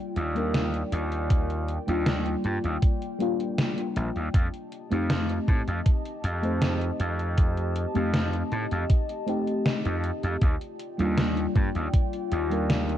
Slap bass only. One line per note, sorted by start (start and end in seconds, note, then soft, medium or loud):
0.16 0.82 D#2 medium
0.92 1.77 D#2 loud
1.88 2.34 D#2 medium
2.45 2.57 G2 medium
2.64 2.76 D#2 medium
3.96 4.09 A#1 medium
4.16 4.28 D#2 medium
4.34 4.47 F2 medium
4.92 5.38 F2 medium
5.48 5.61 A2 medium
5.68 5.80 F2 medium
6.24 6.90 F2 medium
7.00 7.85 F2 medium
7.96 8.42 F2 medium
8.52 8.65 A2 medium
8.72 8.84 F2 medium
9.85 10.10 F2 medium
10.24 10.35 F2 medium
10.42 10.55 D#2 medium
11.00 11.46 D#2 medium
11.56 11.69 G2 medium
11.75 11.87 D#2 medium
12.32 12.98 D#2 medium